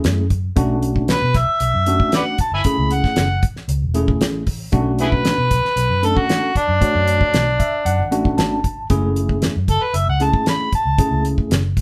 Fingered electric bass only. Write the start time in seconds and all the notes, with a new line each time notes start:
0.05 F#2
0.57 B1
1.22 B2
1.35 B1
1.60 B1
1.74 F#2
2.52 G1
2.78 C#2
3.17 F#1
3.68 C#2
3.82 E1
4.21 A1
4.73 B1
5.38 B2
5.51 B1
5.63 muted fingered electric bass stroke
5.76 B1
5.90 F#2
6.68 F#2
6.95 F#2
7.33 B1
7.85 F#2
7.98 A1
8.38 G#1
8.90 F#1
9.56 F#2
9.68 F#1
9.82 muted fingered electric bass stroke
9.94 F#1
10.08 C#2
10.85 C#2
10.98 muted fingered electric bass stroke
11.11 C#2
11.50 F#1